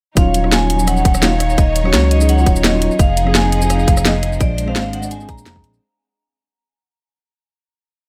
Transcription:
0.15 D#1 D#3 F#3 C#4 D#4 F4 C#5 F5, kick, closed hi-hat, shaker
0.34 closed hi-hat, shaker
0.42 F#3 C#4 D#4 F4, cross-stick
0.52 G#5, snare, closed hi-hat, shaker
0.70 closed hi-hat
0.76 F#3 C#4, shaker
0.80 F3 D#4
0.88 F#5, cross-stick, closed hi-hat, shaker
0.97 shaker
1.05 D#1, kick, closed hi-hat, shaker
1.15 cross-stick, shaker
1.21 F#3 C#4 D#4 F4 F5, snare, closed hi-hat, shaker
1.40 cross-stick, closed hi-hat
1.50 shaker
1.58 D#1 D#5, kick, closed hi-hat, shaker
1.76 closed hi-hat, shaker
1.84 F#3 C#4 D#4 F#4 C#5, cross-stick
1.93 C#2, snare, closed hi-hat, shaker
2.11 D#5, closed hi-hat
2.19 F#3 C#4 D#4 G#4, shaker
2.29 F#5, closed hi-hat, shaker
2.37 F#3 C#4 D#4 F4, shaker
2.46 D#1 C#5, kick, closed hi-hat, shaker
2.56 shaker
2.64 D#5, snare, closed hi-hat, shaker
2.72 F#3 C#4 D#4 F4
2.82 closed hi-hat
2.91 shaker
2.99 F1 F3 D#4 G#4 F5, kick, closed hi-hat, shaker
3.17 closed hi-hat, shaker
3.25 F3 C4 D#4 G#4, cross-stick
3.35 G#5, snare, closed hi-hat, shaker
3.52 closed hi-hat
3.58 F3 C4, shaker
3.63 D#4 G#4
3.70 F5, cross-stick, closed hi-hat, shaker
3.80 shaker
3.88 F1, kick, closed hi-hat, shaker
3.97 cross-stick, shaker
4.04 F3 C4 D#4 G#4 D#5, snare, closed hi-hat, shaker
4.23 cross-stick, closed hi-hat
4.33 shaker
4.41 A#1 G#3 D4 C5 D5, kick, closed hi-hat, shaker
4.58 closed hi-hat, shaker
4.66 G#3 C4 D4 C5 F5, cross-stick
4.76 G#1, snare, closed hi-hat, shaker
4.93 F#5, closed hi-hat
5.01 G#3 C4 D4 D5, shaker
5.11 G#5, closed hi-hat, shaker
5.19 G#3 C4 D4 G#4, shaker
5.29 A#1 A#5, kick, closed hi-hat, shaker
5.38 shaker
5.46 F1, snare, closed hi-hat, shaker
5.54 G#3 C4 D4 G#4, kick
5.64 A#1, closed hi-hat
5.74 shaker

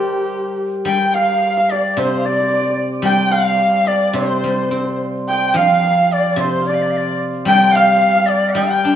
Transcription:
Already playing: G3 G4 A#4 C5
0.85 G3 G5
1.14 F5
1.57 F5
1.70 D5
1.90 D5
1.97 C3 C5
2.19 F5
2.25 D5
2.33 D5
2.40 D5
2.47 D5
2.53 D5
2.61 D5
2.70 D5
3.02 G3 G5
3.31 F5
3.73 F5
3.87 D5
4.13 C3 C5
4.23 C5
4.31 C5
4.37 C5
4.44 G3 C5
4.54 C5
4.62 C5
4.69 C4 C5
4.77 C5
4.85 C5
5.29 G5
5.50 F3 G5
5.56 F5
6.13 D5
6.32 D5
6.36 C3 C5
6.41 C5
6.61 F5
6.67 D5
6.74 F5
6.82 D5
6.90 F5
6.97 D5
7.45 G3 G5
7.72 F5
7.76 F5
8.15 F5
8.26 D5
8.54 G3 G5
8.85 D4

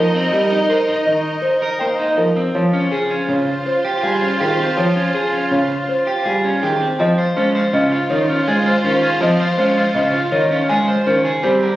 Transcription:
Already playing: F3 D#4 A#4 D#5
0.15 C4
0.32 G3 D#5
0.51 D#4
0.69 A#4 C5
0.88 D#4
1.06 D#3 D#5
1.42 C5
1.62 A#4
1.79 A#3 C5 G5
1.99 D#4
2.17 F3 A#4
2.36 C4
2.55 F3 F4 C5 C#5
2.73 C#4
2.92 G#4
3.10 C#4
3.28 C#3 C#5
3.66 C5
3.85 G4
4.03 G3 G#4 F5
4.22 C#4
4.40 D#3 G4 G#4
4.59 C4
4.77 F3 C#5
4.96 C#4
5.14 G#4
5.33 C#4
5.51 C#3 C#5
5.89 C5
6.07 G4
6.25 G3 G#4 F5
6.44 C#4
6.63 D#3 G4 G#4
6.81 C4
6.98 F3 C4 F4 C5 D#5
7.18 F4 C5
7.36 G#3 C#4 F4 C5
7.55 F4 C5
7.73 C#3 C#4 F4 D#5
7.92 F4
8.10 D#3 D#4 F4 C#5
8.29 C#4 F4
8.47 G#3 F4 G#4 G#5
8.66 F4 C5
8.84 D#3 C#4 F4 C5
9.03 F4 G#4
9.21 F3 C4 F4 D#5
9.40 F4 C5
9.57 G#3 C#4 F4 C5
9.77 F4 C5
9.94 C#3 C#4 F4 D#5
10.14 F4
10.31 D#3 D#4 F4 C#5
10.51 C#4 F4
10.69 G#3 F4 G#4 G#5
10.88 F4 C5
11.06 D#3 C#4 F4 C5
11.25 G#4
11.43 G3 C4 G4 G#4 C5
11.62 G4 A#4

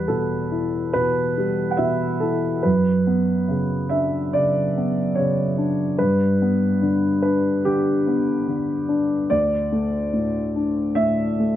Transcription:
Already playing: E2 G3 B4
0.08 B2 A4
0.51 E4
0.93 B2 B4
1.38 G3
1.71 F#5
1.77 B2 E5
2.20 E4 A4
2.63 F#2 B4
3.07 B3
3.48 C#3
3.89 D4 E5
4.33 C#3 D5
4.77 B3
5.15 C#3 C#5
5.58 D4
5.98 G2 B4
6.42 B3
6.82 D3
7.22 D4 B4
7.65 D3 G4
8.07 B3
8.48 D3
8.89 D4
9.30 D2 D5
9.72 A3
10.13 A2
10.56 D4
10.95 A2 E5
11.39 A3

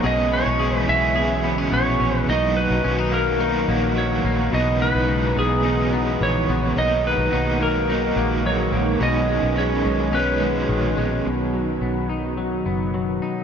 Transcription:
Already playing: G#3
0.02 B1 B2 C#3 E3 B3 C#4 E4 G#4 D#5
0.31 B3 C#5
0.46 B1 C#4
0.59 E3 B3 C#4 G#4
0.63 G#4
0.77 B4
0.87 B1 C#4 G#4 E5
0.92 B3
1.15 B2 E3 G#4
1.19 B3 C#4 G#4
1.44 B3 G#5
1.58 C#4
1.72 A#1 B3 C#5
2.00 A#1 C#4
2.18 B4
2.28 B1 B2 D#3 F#3 A#3 D#4 F#4 D#5
2.32 F#4
2.57 B4
2.70 B1
2.83 B1 F#3 A#3 C#4 D#4
2.87 F#4
2.98 D#4
3.12 A#3 A#4
3.40 F#3 A#3 D#4
3.45 F#4
3.68 A#1 A#3
3.96 F#3 C#5
4.24 A#1 A#3
4.50 B1 B2 C#3 E3 G#3 D#4
4.54 B3 D#4 D#5
4.81 B3 B4
4.95 B1
5.08 D#4
5.36 B1 B3 G#4 B4
5.63 B2 E3 D#4
5.67 B3 D#4
5.93 B3
6.21 A#1 E3 C#5
6.48 A#1 B3 C#5
6.76 B1 B2 D#3 F#3 G#3 A#3 D#4 F#4 D#5
7.07 B4
7.18 B1
7.31 B1 B2 F#3 A#3 D#4
7.36 D#4
7.60 A#3 D#4 A#4
7.64 F#3
7.89 F#3 A#3 D#4
7.94 D#4
8.16 A#1 A#3
8.45 F#3 C#5
8.72 A#1 A#3
9.00 B1 B2 D#3 G#3 C#4 F#4 D#5
9.28 G#3 G#4
9.43 B1 B4
9.56 B2 D#3 G#3 C#4 C#5
9.61 C#4
9.85 B1 G#3 C#5
10.11 B2 D#3 C#4 B4
10.16 G#3 C#4
10.41 G#3
10.69 A#1 D#3
10.97 A#1 G#3
11.26 B1 B2 D#3 F#3 D#4 F#4
11.54 F#3
11.81 B1 B3
12.09 D#4
12.37 F#3
12.66 F#1 B3
12.94 F#3
13.22 D#4

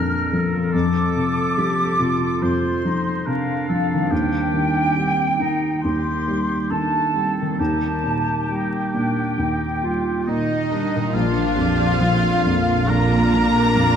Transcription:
Already playing: A#1 F2 A#2 F3 A#3 D4 F4 A#4 F6
0.32 F3 A4
0.55 F3
0.64 C4
0.69 F4 A4 D6
0.74 F2
1.16 C3
1.58 F3 G4
1.99 C3 F4
2.42 F2 F4 C5 C6
2.85 F3 D#4
3.26 C3 D4 A#4 F5
3.69 F3 A4
3.93 D#3
3.98 G3
4.02 C4
4.07 G4
4.11 D#2 G4 G5
4.54 D#3
4.96 G3 C4
5.38 D#3 D#4
5.83 D#2 D#4 G4 C6
6.28 G3
6.70 D#3 D4 A4 A5
7.14 G3 C4
7.41 D#3
7.46 G3
7.50 A#3
7.55 G4 A5
7.59 D#2 D#4 G4
8.03 A#2
8.48 G3 D#4 G5
8.94 A#2 D4
9.38 D#2 D#4
9.83 G3 F4
10.25 A#2 D#3 D#4 D#5
10.71 G3 D4
10.95 A#2
11.00 A#3
11.04 D4
11.09 F4
11.13 A#1 F3 D4 F4 F5
11.56 F2 G4
11.99 F3 C4 F4
12.43 F2 A#3
12.87 A#1 A#3 D4 A#4 A#5
13.33 F3
13.73 F2 F4

